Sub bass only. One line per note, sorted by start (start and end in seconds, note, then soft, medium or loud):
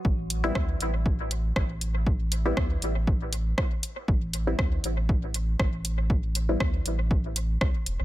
0.05 0.51 A1 loud
0.55 0.75 D2 medium
0.81 1.52 A1 loud
1.56 2.53 A1 loud
2.57 2.77 D2 medium
2.82 3.54 A1 medium
4.08 4.55 A1 loud
4.59 4.79 D2 medium
4.84 5.55 A1 loud
5.59 6.56 A1 loud
6.60 6.81 D2 medium
6.86 7.57 A1 loud
7.61 7.72 C2 medium
7.86 7.97 E1 loud
8.00 8.05 A1 medium